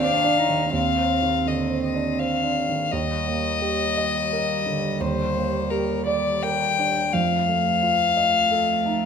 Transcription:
0.00 0.69 D#2 medium
0.00 0.49 D#3 soft
0.00 0.76 C4 medium
0.00 0.24 D4 medium
0.00 0.39 D4 medium
0.00 0.75 C5 medium
0.00 0.72 F5 medium
0.24 0.63 D4 soft
0.37 0.73 D#4 medium
0.49 0.88 D#3 soft
0.73 2.87 D#2 soft
0.73 2.52 C4 medium
0.73 1.49 F5 medium
0.97 1.36 C4 soft
1.22 1.61 D#3 soft
1.46 1.85 D3 soft
1.46 1.83 D#5 medium
1.70 2.09 C5 soft
1.84 2.21 D#5 medium
1.95 2.33 D4 soft
2.19 2.58 C5 soft
2.19 2.93 F5 medium
2.43 2.82 D4 soft
2.68 2.92 D#3 soft
2.91 4.97 D#2 medium
2.91 7.10 G3 medium
2.91 5.02 D#5 medium
3.27 3.83 A#3 soft
3.62 4.18 G4 soft
3.98 4.53 D#5 medium
4.32 4.87 A#4 soft
4.66 5.22 D3 soft
5.00 7.10 D#2 soft
5.00 5.72 C5 medium
5.35 5.92 A#3 soft
5.70 6.30 G4 soft
5.70 6.06 A#4 medium
6.07 6.65 D5 medium
6.07 6.44 D5 medium
6.43 7.00 A#4 soft
6.43 7.14 G5 medium
6.79 7.14 D4 soft
7.13 9.05 F2 medium
7.13 9.05 A3 medium
7.13 9.05 F5 medium
7.48 8.03 A3 soft
7.82 8.37 F4 soft
8.17 8.72 D#5 medium
8.51 9.05 A4 soft
8.86 9.05 D#4 soft

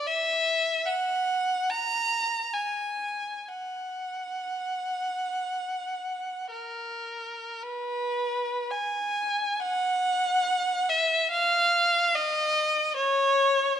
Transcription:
0.07 0.86 E5 medium
0.86 1.71 F#5 medium
1.69 2.54 A#5 medium
2.54 3.48 G#5 medium
3.49 6.52 F#5 soft
6.51 7.60 A#4 soft
7.62 8.71 B4 medium
8.71 9.62 G#5 medium
9.62 10.86 F#5 medium
10.89 11.31 E5 medium
11.31 12.14 F5 medium
12.15 12.96 D#5 medium
12.96 13.76 C#5 medium

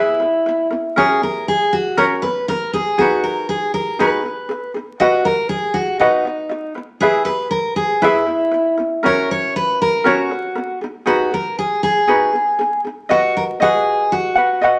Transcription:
0.00 0.19 E4 medium
0.00 0.67 E4 medium
0.00 0.20 G#4 medium
0.00 0.19 B4 medium
0.00 0.20 E5 medium
0.20 0.42 E4 soft
0.20 0.41 B4 soft
0.46 0.68 E4 medium
0.46 0.66 B4 medium
0.70 0.92 C#4 medium
0.70 0.91 A#4 soft
0.96 1.22 C#4 medium
0.96 1.22 F#4 medium
0.96 1.23 G#4 medium
0.96 1.20 A#4 medium
0.96 1.22 C#5 medium
1.22 1.43 C#4 soft
1.22 1.42 A#4 soft
1.22 1.48 A#4 medium
1.48 1.73 G#4 medium
1.73 1.98 F#4 medium
1.97 2.23 C#4 medium
1.97 2.23 F#4 medium
1.97 2.23 A#4 medium
1.97 2.04 A#4 medium
1.97 2.23 C#5 medium
2.22 2.44 A#4 soft
2.22 2.48 B4 medium
2.26 2.45 C#4 soft
2.48 2.70 C#4 medium
2.48 2.73 A#4 medium
2.48 2.69 A#4 medium
2.73 2.95 D#4 soft
2.73 2.94 G#4 soft
2.73 2.99 G#4 medium
2.98 3.99 D#4 medium
2.98 3.24 F#4 medium
2.98 4.00 F#4 medium
2.98 3.98 G#4 medium
2.98 4.00 B4 medium
3.24 3.49 A#4 medium
3.49 3.73 G#4 medium
3.74 3.97 A#4 medium
3.99 4.25 D#4 medium
3.99 4.23 F#4 medium
3.99 4.22 G#4 medium
3.99 4.72 B4 medium
3.99 4.25 B4 medium
4.23 4.46 D#4 soft
4.23 4.45 G#4 soft
4.49 4.71 D#4 medium
4.49 4.70 G#4 soft
4.74 4.97 D#4 soft
4.74 4.95 G#4 soft
5.00 5.26 F#4 medium
5.00 5.26 B4 medium
5.00 5.23 D#5 medium
5.00 5.26 F#5 medium
5.25 5.47 F#4 soft
5.25 5.49 A#4 medium
5.25 5.46 D#5 soft
5.49 5.76 G#4 medium
5.74 5.99 F#4 medium
5.99 6.72 D#4 medium
5.99 6.26 F#4 medium
5.99 6.26 B4 medium
5.99 6.24 D#5 medium
5.99 6.26 F#5 medium
6.25 6.48 F#4 soft
6.25 6.47 D#5 soft
6.49 6.72 F#4 medium
6.49 6.71 D#5 medium
6.75 6.98 E4 soft
6.75 6.97 B4 soft
7.00 7.27 E4 medium
7.00 7.24 G#4 medium
7.00 7.28 G#4 medium
7.00 7.25 B4 medium
7.00 7.28 E5 medium
7.25 7.49 E4 soft
7.25 7.50 B4 medium
7.25 7.47 B4 soft
7.51 7.76 A#4 medium
7.76 8.03 G#4 medium
8.02 8.74 E4 medium
8.02 8.27 E4 medium
8.02 8.28 G#4 medium
8.02 8.25 B4 medium
8.02 8.29 E5 medium
8.27 8.49 E4 soft
8.27 8.48 B4 soft
8.51 8.75 E4 medium
8.51 8.73 B4 soft
8.77 9.00 C#4 soft
8.77 8.99 A#4 soft
9.03 10.04 C#4 medium
9.03 10.05 F#4 medium
9.03 10.03 A#4 medium
9.03 9.31 A#4 medium
9.03 10.05 C#5 medium
9.31 9.56 C#5 medium
9.56 9.81 B4 medium
9.82 10.07 A#4 medium
10.04 10.31 C#4 medium
10.04 10.31 F#4 medium
10.04 10.78 F#4 medium
10.04 10.30 A#4 medium
10.04 10.31 C#5 medium
10.31 10.53 C#4 soft
10.31 10.52 A#4 soft
10.55 10.78 C#4 medium
10.55 10.77 A#4 medium
10.81 11.03 D#4 medium
10.81 11.02 G#4 soft
11.06 11.32 D#4 medium
11.06 11.31 F#4 medium
11.06 11.33 F#4 medium
11.06 11.30 G#4 medium
11.06 11.32 B4 medium
11.31 11.54 D#4 soft
11.31 11.52 G#4 soft
11.31 11.57 A#4 medium
11.59 11.82 G#4 medium
11.83 12.80 G#4 medium
12.07 12.34 D#4 medium
12.07 12.33 F#4 medium
12.07 12.32 G#4 medium
12.07 12.34 B4 medium
12.33 12.55 D#4 soft
12.33 12.54 G#4 soft
12.59 12.81 D#4 medium
12.59 12.80 G#4 medium
12.84 13.06 D#4 medium
12.84 13.05 G#4 soft
13.09 13.60 F#4 medium
13.09 13.34 F#4 medium
13.09 13.62 B4 medium
13.09 13.59 D#5 medium
13.09 13.61 F#5 medium
13.37 13.43 A#4 medium
13.60 14.36 F#4 medium
13.60 14.13 G#4 medium
13.60 14.37 B4 medium
13.60 14.36 D#5 medium
13.60 14.34 F#5 medium
14.12 14.79 F#4 medium
14.35 14.62 F#4 soft
14.35 14.61 B4 soft
14.35 14.61 F#5 soft
14.61 14.79 F#4 medium
14.61 14.79 B4 medium
14.61 14.79 D#5 medium
14.61 14.79 F#5 medium

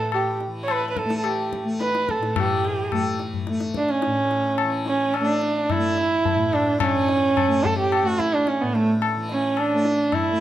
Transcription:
0.00 2.19 A2 medium
0.00 0.48 E3 medium
0.00 1.05 A3 medium
0.00 0.13 A4 medium
0.12 0.39 G4 medium
0.12 tabla na medium
0.40 tabla te medium
0.48 2.34 E3 medium
0.63 0.73 C#5 medium
0.68 0.89 B4 medium
0.68 tabla na medium
0.90 0.98 B4 medium
0.97 1.17 A4 medium
0.97 tabla ke medium
1.05 1.64 A3 medium
1.10 tabla te medium
1.18 1.26 A4 medium
1.24 1.52 G4 medium
1.24 tabla na medium
1.53 tabla ke medium
1.64 2.92 A3 medium
1.81 2.11 B4 medium
1.81 tabla te medium
1.95 tabla te medium
2.09 2.37 A4 medium
2.09 tabla ke medium
2.19 4.06 A2 medium
2.19 tabla te medium
2.35 4.63 E3 medium
2.35 tabla na loud
2.35 tabla ge medium
2.39 3.17 G4 medium
2.65 tabla te medium
2.92 3.49 A3 medium
2.92 tabla na medium
2.92 tabla ge medium
3.19 tabla te medium
3.34 tabla ge medium
3.47 5.20 A3 medium
3.47 tabla te medium
3.60 tabla te medium
3.74 3.92 D4 medium
3.74 tabla ke medium
3.89 4.73 C#4 medium
3.89 tabla te medium
4.02 tabla te medium
4.06 6.34 A2 medium
4.31 tabla te medium
4.58 tabla na medium
4.64 6.90 E3 medium
4.86 5.15 C#4 medium
4.86 tabla te medium
5.14 5.26 C#4 medium
5.14 tabla na medium
5.20 5.76 A3 medium
5.26 5.73 D4 medium
5.41 tabla te medium
5.70 6.55 E4 loud
5.70 tabla na medium
5.70 tabla ge medium
5.76 7.48 A3 medium
5.97 tabla te medium
6.25 tabla tin medium
6.25 tabla ge medium
6.35 8.62 A2 medium
6.53 6.81 D4 medium
6.53 tabla na medium
6.80 7.66 C#4 loud
6.80 tabla na loud
6.80 tabla ge loud
6.91 9.16 E3 medium
7.08 tabla te medium
7.37 tabla na medium
7.37 tabla ge medium
7.48 8.03 A3 medium
7.64 7.78 A4 loud
7.64 tabla ge medium
7.78 8.07 G4 loud
7.92 tabla na medium
8.03 9.74 A3 medium
8.03 8.20 F#4 loud
8.19 8.35 E4 loud
8.19 tabla ke medium
8.33 8.49 D4 loud
8.47 8.63 C#4 medium
8.47 tabla te medium
8.61 10.40 A2 medium
8.61 8.76 B3 medium
8.74 8.88 A3 medium
8.74 tabla te medium
9.02 tabla na medium
9.17 10.40 E3 medium
9.29 9.60 C#4 medium
9.29 tabla te medium
9.57 10.15 D4 medium
9.57 tabla na medium
9.74 10.30 A3 medium
9.85 tabla te medium
10.12 10.40 E4 medium
10.12 tabla na medium
10.12 tabla ge medium
10.30 10.40 A3 medium

